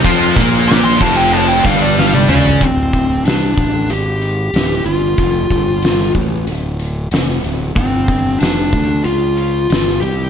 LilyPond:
<<
  \new Staff \with { instrumentName = "Lead electric guitar" } { \time 4/4 \key d \minor \tempo 4 = 93 r4 d'''16 c'''16 a''16 g''16 a''16 g''16 f''16 d''16 f''16 d''16 d''8 | c'4 d'4 g'4. f'8~ | f'4. r2 r8 | c'4 d'4 f'4. g'8 | }
  \new Staff \with { instrumentName = "Distorted electric guitar" } { \clef bass \time 4/4 \key d \minor <f f'>8 <bes, bes>4 <f, f>4 <g, g>4 <des des'>8 | r1 | r1 | r1 | }
  \new Staff \with { instrumentName = "Distorted electric guitar" } { \clef bass \time 4/4 \key d \minor <f f'>8 <bes, bes>4 <f, f>4 <g, g>4 <des des'>8 | r1 | r1 | r1 | }
  \new Staff \with { instrumentName = "Distorted electric guitar" } { \clef bass \time 4/4 \key d \minor <f f'>8 <bes, bes>4 <f, f>4 <g, g>4 <des des'>8 | r1 | r1 | r1 | }
  \new Staff \with { instrumentName = "Fingered electric bass" } { \clef bass \time 4/4 \key d \minor f,8 bes,,4 f,,4 g,,4 des,8 | d,,4 c,8 a,,8 gis,,4 d,,8 g,,8 | f,,8 g,,4 a,,8 d,,4 f,,8 d,,8 | g,,4 f,,8 d,8 cis,4 g,,8 c,8 | }
  \new DrumStaff \with { instrumentName = "Drums" } \drummode { \time 4/4 <cymc bd>8 <cymc bd>8 <cymc sn>8 <cymc bd>8 cymc8 <cymc bd>16 sn16 sn16 tommh16 toml16 tomfh16 | <hh bd>8 <hh bd>8 <hh sn>8 <hh bd>8 hh8 hh8 <hh sn>8 hh8 | <hh bd>8 <hh bd>8 <hh sn>8 <hh bd>8 hh8 hh8 <hh sn>8 hh8 | <hh bd>8 <hh bd>8 <hh sn>8 <hh bd>8 hh8 hh8 <hh sn>8 hh8 | }
>>